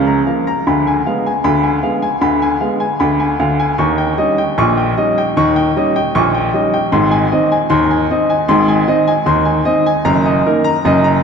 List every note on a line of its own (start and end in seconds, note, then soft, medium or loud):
0.00 0.20 C#2 medium
0.00 0.20 C#3 medium
0.07 0.27 A#5 medium
0.27 0.48 F3 medium
0.27 0.48 A#3 medium
0.27 0.46 F5 medium
0.47 0.66 A#5 medium
0.67 0.99 D2 medium
0.67 0.99 D3 medium
0.67 0.86 B5 medium
0.87 1.06 G#5 medium
1.06 1.27 G#3 medium
1.06 1.28 B3 medium
1.06 1.26 F5 medium
1.26 1.46 G#5 medium
1.44 1.77 D2 medium
1.44 1.77 D3 medium
1.44 1.64 B5 medium
1.63 1.84 G#5 medium
1.83 2.04 G#3 soft
1.83 2.04 B3 medium
1.83 2.03 F5 medium
2.02 2.23 G#5 medium
2.21 2.55 D2 medium
2.21 2.55 D3 loud
2.21 2.42 B5 medium
2.42 2.62 G#5 medium
2.61 2.83 G#3 medium
2.61 2.82 B3 medium
2.61 2.82 F5 medium
2.80 3.01 G#5 medium
3.00 3.34 D2 medium
3.00 3.34 D3 medium
3.00 3.21 B5 medium
3.20 3.41 G#5 medium
3.39 3.71 D2 medium
3.39 3.71 D3 medium
3.39 3.60 F5 medium
3.59 3.79 G#5 medium
3.78 4.12 D#2 medium
3.78 4.13 D#3 medium
3.78 3.99 C#6 medium
3.98 4.19 G5 medium
4.18 4.40 G3 medium
4.18 4.40 C#4 medium
4.18 4.40 D#4 medium
4.18 4.39 D#5 medium
4.38 4.59 G5 medium
4.58 4.91 A#1 loud
4.58 4.92 A#2 medium
4.58 4.79 C#6 medium
4.77 4.98 G5 medium
4.97 5.19 G3 medium
4.97 5.20 C#4 medium
4.97 5.20 D#4 medium
4.97 5.18 D#5 medium
5.18 5.38 G5 medium
5.37 5.70 D#2 medium
5.37 5.70 D#3 loud
5.37 5.57 C#6 medium
5.56 5.77 G5 medium
5.76 5.98 G3 medium
5.76 5.98 C#4 medium
5.76 5.99 D#4 medium
5.76 5.97 D#5 medium
5.96 6.16 G5 medium
6.15 6.48 A#1 medium
6.15 6.49 A#2 medium
6.15 6.36 C#6 medium
6.35 6.55 G5 medium
6.53 6.75 G3 medium
6.53 6.76 C#4 medium
6.53 6.76 D#4 medium
6.53 6.74 D#5 medium
6.74 6.93 G5 medium
6.92 7.26 G#1 loud
6.92 7.26 G#2 loud
6.92 7.13 C6 medium
7.11 7.33 G#5 medium
7.32 7.54 D#3 medium
7.32 7.54 C4 medium
7.32 7.54 D#4 medium
7.32 7.53 D#5 medium
7.52 7.72 G#5 medium
7.70 8.04 D#2 loud
7.70 8.04 D#3 loud
7.70 7.91 C6 medium
7.91 8.11 G#5 medium
8.10 8.32 D#3 medium
8.10 8.32 C4 medium
8.10 8.33 D#4 medium
8.10 8.31 D#5 medium
8.30 8.51 G#5 medium
8.48 8.82 G#1 medium
8.48 8.82 G#2 loud
8.48 8.70 C6 medium
8.68 8.89 G#5 medium
8.88 9.10 D#3 medium
8.88 9.10 C4 medium
8.88 9.10 D#4 medium
8.88 9.09 D#5 medium
9.07 9.29 G#5 medium
9.26 9.60 D#2 medium
9.26 9.60 D#3 medium
9.26 9.48 C6 medium
9.45 9.67 G#5 medium
9.65 9.87 D#3 medium
9.65 9.88 C4 medium
9.65 9.88 D#4 medium
9.65 9.87 D#5 medium
9.86 10.06 G#5 medium
10.05 10.39 F#1 loud
10.05 10.39 F#2 loud
10.05 10.26 A#5 medium
10.26 10.47 D#5 medium
10.46 10.68 D#3 medium
10.46 10.68 A#3 medium
10.46 10.68 D#4 medium
10.46 10.67 A#4 medium
10.64 10.85 A#5 medium
10.85 11.18 F#1 loud
10.85 11.18 F#2 loud
10.85 11.06 D#5 medium
11.04 11.23 A#5 medium